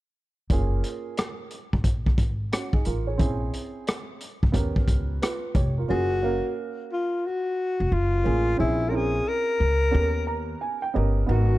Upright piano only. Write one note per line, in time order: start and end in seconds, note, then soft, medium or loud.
0.50 1.51 A#3 medium
0.50 1.52 C#4 medium
0.50 1.52 F4 medium
0.50 1.52 G#4 medium
2.52 2.73 C#4 soft
2.52 2.73 F#4 medium
2.74 2.86 D#4 medium
2.74 2.85 G#4 medium
2.85 3.07 F4 medium
2.85 3.06 A#4 medium
3.07 3.19 G#4 soft
3.07 3.39 C#5 medium
3.18 4.20 C4 medium
3.18 4.20 C#4 medium
3.18 4.21 E4 medium
3.18 4.21 G#4 medium
4.52 5.38 B3 medium
4.52 5.39 C#4 medium
4.52 5.22 G4 medium
4.52 5.22 A#4 medium
5.22 5.54 F4 soft
5.22 5.54 B4 medium
5.55 5.77 G4 medium
5.55 5.76 C#5 medium
5.78 5.88 F4 soft
5.78 6.10 A#4 medium
5.88 6.16 A#3 medium
5.88 6.17 C#4 medium
5.88 6.17 F4 medium
5.88 6.18 G#4 medium
6.22 7.24 A#3 medium
6.22 7.24 C#4 medium
6.22 7.25 A#4 medium
6.22 7.25 F5 medium
8.24 8.52 A#3 medium
8.24 8.52 C#4 medium
8.24 8.53 F4 medium
8.24 8.53 G#4 medium
8.57 8.86 C4 medium
8.57 8.86 C#4 medium
8.57 8.86 E4 medium
8.57 8.87 G#4 medium
8.91 9.93 C4 medium
8.91 9.90 C#4 medium
8.91 9.94 E4 medium
8.91 9.94 A#4 medium
9.91 10.77 B3 medium
9.91 10.78 C#4 medium
9.91 10.78 G4 medium
9.91 10.02 A4 medium
10.00 10.81 A#4 medium
10.27 10.59 A#5 medium
10.61 10.81 G#5 medium
10.82 10.94 G5 medium
10.94 11.22 B3 medium
10.94 11.22 C#4 medium
10.94 11.23 G4 medium
10.94 11.23 A#4 medium
10.94 11.26 D#5 medium
11.27 11.55 B3 medium
11.27 11.56 D#4 medium
11.27 11.56 F#4 medium
11.27 11.57 A#4 medium